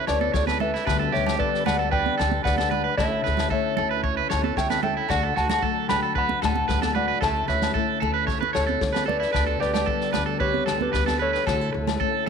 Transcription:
Already playing: A3 C#4 E4 A4
0.07 D2 C#4 B4 C#5 D5, muted nylon-string guitar stroke, snare, low agogo
0.21 A4, high conga
0.34 D2 F#4 A4 C#5 D5, kick, snare
0.47 A4 B4, snare, high conga, low agogo
0.60 A4 B4 E5, low conga
0.74 E4, snare
0.85 D2 D3 G3 B3 D4 G4 B4, kick, snare, low agogo
0.90 B4
0.99 A4
1.12 D2 G4 B4 C#5 E5, snare
1.26 G4, snare, low conga, low agogo
1.39 G3 B3 A4 B4 D5, kick
1.54 snare
1.66 D2 B4 D5 F#5, snare, low conga, low agogo
1.79 A4
1.91 B4 D5 G5, kick
2.06 high conga
2.18 D2 D3 A4, snare, low agogo
2.32 high conga
2.44 D2 B4 D5 F#5, kick, snare
2.58 A4, snare, high conga, low agogo
2.71 B4, low conga
2.84 B4
2.97 D2 D3 C#4 E4 A4 C#5 E5, kick, snare, low agogo
3.24 D2 A4 B4, snare
3.37 snare, low conga, low agogo
3.50 A3 C#4 A4 C#5 E5, kick
3.77 D2 A4, low conga, low agogo
3.91 B4
4.04 C#5, kick
4.17 B4
4.30 D2 D3 C#4 C#5, snare, low agogo
4.44 A4, high conga
4.57 D2 A4 C#5 E5 G5, kick, snare
4.70 B4, snare, high conga, low agogo
4.83 A4 E5 G5, low conga
4.97 E4
5.09 D2 D3 D4 F#4 D5 F#5, kick, snare, low agogo
5.23 A4
5.36 D2 F#4 F#5 A5, snare
5.49 F#4, snare, low conga, low agogo
5.62 F#3 A3 A4, kick
5.89 D2 D4 B4 G5 B5, snare, low conga, low agogo
6.03 A4
6.15 B4 F#5 B5, kick
6.29 high conga
6.42 D2 A2 A3 A4 F#5 A5, snare, low agogo
6.56 high conga
6.68 D2 D4 B4, kick, snare
6.82 A4, snare, high conga, low agogo
6.95 F#4 B4 D5 F#5, low conga
7.08 B4
7.21 D2 D3 C#4 E4 A4 E5 A5, kick, snare, low agogo
7.48 D2 F#4 B4 C#5 E5, snare
7.62 A4, snare, low conga, low agogo
7.74 A3 E4 A4, kick
8.00 D2 A4, low conga, low agogo
8.14 B4
8.27 C#5, kick, snare
8.41 B4, high conga
8.53 D2 E4 A4 C#5, snare, low agogo
8.67 A4, high conga
8.81 D2 A4, kick, snare
8.93 B4, snare, high conga, low agogo
9.06 A4 B4 D5, low conga
9.20 E4, snare
9.33 D2 D3 B3 D4 G4 B4, muted nylon-string guitar stroke, kick, snare, low agogo
9.47 A4
9.60 D2 G4 B4 D5, snare
9.74 G4, snare, low conga, low agogo
9.86 G3 B3 A4, kick
10.01 snare
10.13 D2 B4, snare, low conga, low agogo
10.26 A4
10.40 G4 B4 C#5, kick
10.54 high conga
10.66 D2 D3 B3 A4, snare, low agogo
10.81 G4 B4, high conga
10.93 D2 B3 B4, kick, snare
11.06 A4, snare, high conga, low agogo
11.19 A4 B4 C#5
11.33 B4, snare
11.47 D2 D3 A3 E4 F#4 A4, kick, snare, low agogo
11.61 A4
11.73 D2 A4, muted clean electric guitar stroke
11.87 snare, low conga, low agogo
12.00 A3 C#4 A4, kick

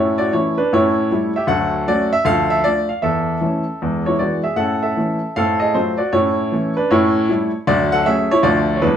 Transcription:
Already playing: A2 C#4 E4 C#5
0.18 F#4 D5
0.33 E3 A3 C#4 E4 C#5
0.58 D4 B4
0.73 A2 C#4 E4 C#5
1.11 G3 A3 E4
1.36 G4 E5
1.47 D2 F#3 A4 F#5
1.88 F#3 A3 C#4 F#4 D5
2.13 E5
2.25 D2 F3 A4 F5
2.50 E5
2.64 A3 D4 F4 D5
2.89 F5
3.02 E2 A4 E5
3.41 E3 A3 C#4
3.82 E2 G#3
4.06 E4 C#5
4.19 E3 G#3 B3 F#4 D5
4.44 G#4 E5
4.56 A2 C#4 A4 F#5
4.83 A4 E5
4.97 E3 A3 C#4
5.36 A2 C4 A4 F5
5.60 G#4 D#5
5.74 F#3 A3 C4 F4 C5
5.98 F#4 D5
6.13 A2 C#4 E4 C#5
6.52 E3 A3 C#4
6.77 D4 B4
6.91 A2 C#4 E4 C#5
7.29 G3 A3 E4
7.67 D2 F#3 F#4 D5
7.92 A4 F#5
8.06 F#3 A3 C#4 G#4 E5
8.31 E4 C#5
8.43 D2 F3 A3 D4 F4 D5
8.76 C#5
8.82 E2 E3 G#3 D4 B4

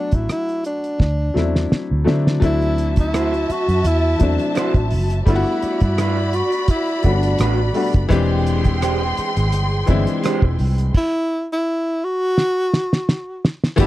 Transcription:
Already playing: F#3 A3 B3 D4 F#4
0.11 A1 E4, kick, closed hi-hat
0.29 E4, cross-stick, closed hi-hat
0.49 closed hi-hat
0.64 D4, closed hi-hat
0.84 closed hi-hat
1.00 D2, kick, snare
1.34 E2 F#3 A3 C4 D4 E4, snare
1.56 snare
1.72 muted fingered electric bass stroke, snare
1.91 D2
2.04 D3 F#3 A3 C4 D4 E4, snare
2.27 snare
2.40 D2 F#3 A3 C4 D4 E4 F#4 E5 A5, kick, closed hi-hat
2.46 E4
2.62 closed hi-hat
2.78 closed hi-hat
2.96 kick, closed hi-hat
3.00 E4
3.13 A3 E4 F#4 C5, cross-stick, closed hi-hat
3.34 closed hi-hat
3.50 F#4, muted fingered electric bass stroke, closed hi-hat
3.68 F#2, closed hi-hat
3.84 E2 E4, closed hi-hat
4.19 E2 F#3 A3 C4 D4 E4, kick, closed hi-hat
4.39 closed hi-hat
4.55 A3 E4 F#4 C5, cross-stick, closed hi-hat
4.74 A1, kick, closed hi-hat
4.91 F#1, open hi-hat
5.10 cross-stick, closed hi-hat
5.26 G1 G3 A3 B3 D4 E4 F4 F#4 D5 B5, kick, closed hi-hat
5.36 F#4
5.46 closed hi-hat
5.62 muted fingered electric bass stroke, closed hi-hat
5.80 G2 E4, kick, closed hi-hat
5.98 A3 D4 F#4 B4, cross-stick, closed hi-hat
6.33 F#4, closed hi-hat
6.52 closed hi-hat
6.68 E4, kick, closed hi-hat
6.87 closed hi-hat
7.02 G1 G3 A3 B3 D4 F#4, kick, closed hi-hat
7.07 D4
7.23 closed hi-hat
7.39 A1 A3 D4 F#4 B4, cross-stick, closed hi-hat
7.73 G3 A3 B3 D4 F#4, open hi-hat
7.94 F#1, kick, closed hi-hat
8.09 E1 E3 G#3 C4 D4 G4 G#4 G5 C6, kick, closed hi-hat
8.47 closed hi-hat
8.64 kick, closed hi-hat
8.81 G#3 D4 G4 C5, cross-stick, closed hi-hat
9.17 muted fingered electric bass stroke, closed hi-hat
9.37 G#1, closed hi-hat
9.52 G1, closed hi-hat
9.86 G1 E3 G#3 C4 D4 E4, kick, closed hi-hat
10.07 closed hi-hat
10.23 G#3 D4 G4 C5, cross-stick, closed hi-hat
10.42 E1, kick
10.59 C2, open hi-hat
10.78 cross-stick, closed hi-hat
10.94 E4, kick, crash
11.53 E4
12.04 F#4
12.38 snare
12.74 snare
12.93 snare
13.09 snare
13.45 snare
13.64 snare
13.76 G1 E3 A3 B3 D4 E4 G4 A4 A5, kick, closed hi-hat, tambourine

